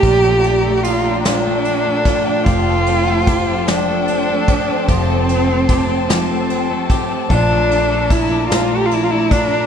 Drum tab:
RD |xxxxxx|xxxxxx|xxxxxx|xxxxxx|
SD |---o--|---o--|---o--|---o--|
BD |o----o|o-o--o|o-o--o|o-o--o|